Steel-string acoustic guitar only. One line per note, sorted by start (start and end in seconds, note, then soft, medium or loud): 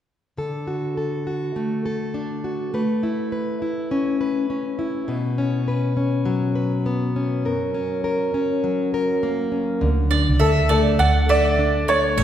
0.37 2.74 D3 medium
0.37 0.97 A4 soft
0.67 1.26 F#4 soft
0.97 1.85 A4 medium
1.27 2.43 F#4 soft
1.56 2.73 A3 medium
1.86 2.74 A4 medium
2.14 2.81 D4 soft
2.44 2.81 F#4 soft
2.74 5.10 A3 medium
2.74 3.32 B4 medium
3.03 3.61 E4 soft
3.32 4.20 B4 medium
3.62 4.78 E4 medium
3.91 4.50 C#4 medium
4.21 5.08 B4 medium
4.50 5.38 C#4 soft
4.79 5.16 E4 soft
5.08 7.45 B2 medium
5.08 5.67 B4 medium
5.38 5.96 C#4 medium
5.68 6.54 B4 soft
5.97 7.16 C#4 medium
6.25 8.63 F#3 medium
6.55 7.45 B4 medium
6.86 7.52 B3 soft
7.16 7.74 C#4 soft
7.45 9.82 F#2 medium
7.45 8.03 A#4 medium
7.74 8.33 C#4 medium
8.04 8.93 A#4 medium
8.34 9.51 C#4 medium
8.64 12.14 F#3 medium
8.94 9.89 A#4 medium
9.23 9.89 A#3 soft
9.52 9.89 C#4 soft
9.81 12.18 D3 medium
10.11 10.98 D4 medium
10.40 11.29 A4 medium
10.69 11.87 A3 medium
10.99 11.58 D4 medium
11.29 12.24 A4 medium
11.59 12.24 D4 medium
11.88 12.17 A3 medium
12.17 12.24 A3 medium